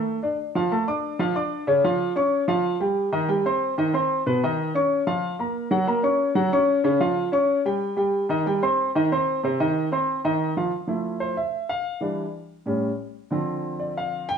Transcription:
0.00 0.17 A3 medium
0.00 0.17 A4 medium
0.23 0.36 D4 medium
0.23 0.36 D5 medium
0.55 0.68 F3 medium
0.55 0.68 F4 medium
0.55 0.69 F5 medium
0.71 0.84 A3 medium
0.71 0.85 A4 medium
0.71 0.85 A5 medium
0.88 1.14 D4 medium
0.88 1.14 D5 medium
0.88 1.14 D6 medium
1.19 1.33 F3 medium
1.19 1.33 F4 medium
1.19 1.33 F5 medium
1.35 1.62 D4 medium
1.35 1.62 D5 medium
1.35 1.62 D6 medium
1.67 1.81 C#3 medium
1.67 1.81 C#4 medium
1.67 1.81 C#5 medium
1.84 2.11 F3 medium
1.84 2.11 F4 medium
1.84 2.11 F5 medium
2.16 2.42 C#4 medium
2.16 2.43 C#5 medium
2.16 2.43 C#6 medium
2.48 2.75 F3 medium
2.48 2.75 F4 medium
2.48 2.75 F5 medium
2.80 3.07 G3 medium
2.80 3.07 G4 medium
2.80 3.07 G5 medium
3.12 3.26 D#3 medium
3.12 3.26 D#4 medium
3.12 3.26 D#5 medium
3.28 3.42 G3 medium
3.28 3.42 G4 medium
3.28 3.42 G5 medium
3.45 3.72 C4 medium
3.45 3.72 C5 medium
3.45 3.73 C6 medium
3.78 3.91 D#3 medium
3.78 3.91 D#4 medium
3.78 3.92 D#5 medium
3.93 4.20 C4 medium
3.93 4.21 C5 medium
3.93 4.21 C6 medium
4.26 4.40 B2 medium
4.26 4.40 B3 medium
4.26 4.40 B4 medium
4.43 4.70 D#3 medium
4.43 4.70 D#4 medium
4.43 4.70 D#5 medium
4.75 5.01 C#4 medium
4.75 5.02 C#5 medium
4.75 5.02 C#6 medium
5.07 5.34 F3 medium
5.07 5.34 F4 medium
5.07 5.34 F5 medium
5.39 5.66 A#3 medium
5.39 5.66 A#4 medium
5.39 5.66 A#5 medium
5.71 5.85 F#3 medium
5.71 5.85 F#4 medium
5.71 5.85 F#5 medium
5.87 6.01 A#3 medium
5.87 6.01 A#4 medium
5.87 6.01 A#5 medium
6.03 6.30 C#4 medium
6.03 6.30 C#5 medium
6.03 6.31 C#6 medium
6.35 6.49 F#3 medium
6.35 6.49 F#4 medium
6.35 6.49 F#5 medium
6.53 6.79 C#4 medium
6.53 6.79 C#5 medium
6.53 6.79 C#6 medium
6.84 6.98 C#3 medium
6.84 6.98 C#4 medium
6.84 6.98 C#5 medium
7.00 7.27 F3 medium
7.00 7.28 F4 medium
7.00 7.27 F5 medium
7.32 7.59 C#4 medium
7.32 7.60 C#5 medium
7.32 7.60 C#6 medium
7.65 7.92 G3 medium
7.65 7.92 G4 medium
7.65 7.93 G5 medium
7.97 8.24 G3 medium
7.97 8.24 G4 medium
7.97 8.24 G5 medium
8.29 8.43 D#3 medium
8.29 8.43 D#4 medium
8.29 8.44 D#5 medium
8.46 8.60 G3 medium
8.46 8.60 G4 medium
8.46 8.60 G5 medium
8.63 8.89 C4 medium
8.63 8.89 C5 medium
8.63 8.89 C6 medium
8.95 9.09 D#3 medium
8.95 9.09 D#4 medium
8.95 9.09 D#5 medium
9.12 9.38 C4 medium
9.12 9.38 C5 medium
9.12 9.38 C6 medium
9.43 9.57 C3 medium
9.43 9.57 C4 medium
9.43 9.57 C5 medium
9.60 9.87 D#3 medium
9.60 9.87 D#4 medium
9.60 9.87 D#5 medium
9.92 10.19 C4 medium
9.92 10.19 C5 medium
9.92 10.19 C6 medium
10.25 10.51 D#3 medium
10.25 10.51 D#4 medium
10.25 10.51 D#5 medium
10.57 10.70 F3 medium
10.57 10.70 F4 medium
10.57 10.70 F5 medium
10.87 11.34 F3 medium
10.87 11.35 A3 soft
10.87 11.35 E4 medium
11.20 11.37 C5 medium
11.37 11.67 E5 medium
11.69 12.00 F5 medium
12.01 12.23 E3 medium
12.01 12.23 G3 medium
12.01 12.24 D4 medium
12.66 12.88 A2 medium
12.66 12.88 G3 medium
12.66 12.88 C#4 medium
13.31 14.38 D3 medium
13.31 14.38 F3 medium
13.31 14.38 C4 medium
13.80 13.96 D5 medium
13.97 14.27 F5 medium
14.29 14.38 G5 loud

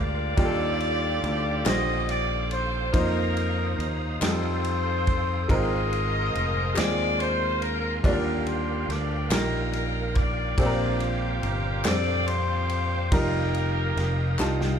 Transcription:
0.00 0.34 D2 loud
0.00 0.34 D3 medium
0.00 0.29 G#3 medium
0.00 0.29 D4 medium
0.00 0.30 F4 medium
0.00 1.62 F4 medium
0.00 1.62 G4 medium
0.00 0.33 A#4 medium
0.00 0.35 A#4 medium
0.00 1.66 D5 loud
0.00 0.36 F5 medium
0.00 2.90 D6 medium
0.36 1.19 D#2 loud
0.36 1.57 G3 medium
0.36 1.57 D4 medium
0.36 1.61 D#4 medium
0.36 1.58 F4 medium
0.36 0.44 G4 medium
0.36 2.91 A4 medium
0.36 5.45 F5 medium
0.36 2.91 G5 medium
0.36 kick loud
0.36 ride medium
0.45 1.61 A4 medium
0.80 ride soft
1.23 1.62 D2 medium
1.23 ride soft
1.64 2.90 A#1 loud
1.64 2.85 D3 medium
1.64 2.85 G3 medium
1.64 2.86 F4 medium
1.64 2.86 C5 medium
1.64 2.08 D#5 loud
1.64 snare loud
1.64 clap medium
1.64 ride medium
2.09 2.49 D5 medium
2.09 ride soft
2.51 2.94 C5 medium
2.51 ride soft
2.92 3.75 F2 medium
2.92 4.13 A#3 medium
2.92 4.13 D#4 medium
2.92 4.18 D#4 medium
2.92 4.14 F4 medium
2.92 3.95 A#4 loud
2.92 4.19 C5 medium
2.92 4.14 C5 medium
2.92 4.19 A#5 medium
2.92 4.20 D#6 medium
2.92 kick loud
2.92 ride medium
3.37 ride soft
3.79 4.18 D#2 medium
3.79 ride soft
4.20 5.45 F2 loud
4.20 5.40 G3 medium
4.20 5.41 D#4 medium
4.20 5.41 F4 medium
4.20 4.28 G#4 medium
4.20 5.48 A4 medium
4.20 5.48 G5 medium
4.20 5.48 D#6 medium
4.20 snare loud
4.20 clap medium
4.20 ride medium
4.24 5.47 D#4 medium
4.24 5.47 A4 medium
4.24 5.46 C5 loud
4.29 5.45 A4 medium
4.64 ride soft
5.07 kick medium
5.07 ride soft
5.48 6.30 G#1 medium
5.48 6.73 G#2 medium
5.48 6.68 G#3 medium
5.48 6.69 C4 medium
5.48 6.69 F4 medium
5.48 8.02 A#4 medium
5.48 6.70 A#4 medium
5.48 6.73 A#4 medium
5.48 6.73 C5 medium
5.48 6.73 D#5 loud
5.48 10.55 F5 medium
5.48 8.02 G#5 medium
5.48 8.02 C6 medium
5.48 kick loud
5.48 ride medium
5.93 ride soft
6.35 6.74 F1 medium
6.35 ride soft
6.75 8.00 D#2 medium
6.75 7.95 G#3 medium
6.75 7.96 C4 medium
6.75 7.96 F4 medium
6.75 7.96 G#4 medium
6.75 7.19 D5 loud
6.75 snare loud
6.75 clap medium
6.75 ride medium
7.20 7.62 C5 medium
7.20 ride soft
7.62 7.93 A#4 medium
7.62 ride soft
8.03 8.85 D#2 loud
8.03 9.27 D3 medium
8.03 9.23 G3 medium
8.03 9.23 D4 medium
8.03 9.28 D4 medium
8.03 9.24 F4 medium
8.03 9.28 G4 medium
8.03 10.56 A#4 medium
8.03 8.44 A#4 loud
8.03 9.24 D5 medium
8.03 14.79 G5 medium
8.03 kick loud
8.03 ride medium
8.47 8.89 C5 medium
8.47 ride soft
8.89 9.28 D2 medium
8.89 9.32 D5 medium
8.89 snare soft
8.89 ride soft
9.30 10.54 A#1 loud
9.30 10.50 G3 medium
9.30 10.50 D#4 medium
9.30 10.51 F4 medium
9.30 10.51 A#4 medium
9.30 9.72 A#4 medium
9.30 snare loud
9.30 clap medium
9.30 ride medium
9.73 10.13 A#4 medium
9.73 ride soft
10.15 10.58 D5 medium
10.15 kick medium
10.15 ride soft
10.57 11.39 A#1 loud
10.57 11.81 A#2 medium
10.57 11.77 G3 medium
10.57 11.78 C4 medium
10.57 11.78 D4 medium
10.57 11.82 F4 medium
10.57 11.82 G4 medium
10.57 10.65 A4 medium
10.57 13.09 C5 medium
10.57 11.13 D5 loud
10.57 13.09 F5 medium
10.57 13.10 D6 medium
10.57 kick loud
10.57 ride medium
10.66 11.81 A#4 loud
11.00 ride soft
11.43 11.82 G1 medium
11.43 11.82 A#4 medium
11.43 ride soft
11.84 13.08 F2 loud
11.84 13.04 G3 medium
11.84 13.05 C4 medium
11.84 13.05 D4 medium
11.84 13.05 A4 medium
11.84 12.27 D5 loud
11.84 snare loud
11.84 clap medium
11.84 ride medium
12.27 13.08 F4 medium
12.27 13.08 G4 medium
12.27 13.12 C5 loud
12.27 ride soft
12.69 ride soft
13.11 13.93 F1 loud
13.11 14.31 G3 medium
13.11 14.31 D#4 medium
13.11 14.79 D#4 medium
13.11 14.32 F4 medium
13.11 14.78 G4 medium
13.11 14.79 A#4 medium
13.11 14.79 A#4 loud
13.11 14.32 A#4 loud
13.11 14.79 F5 medium
13.11 14.79 D#6 medium
13.11 kick loud
13.11 ride medium
13.54 ride soft
13.97 14.36 F1 loud
13.97 snare soft
13.97 ride soft
14.38 14.79 C2 medium
14.38 14.79 G3 medium
14.38 14.79 D#4 medium
14.38 14.79 F4 medium
14.38 14.79 A5 medium
14.38 snare medium
14.38 clap medium
14.61 snare medium

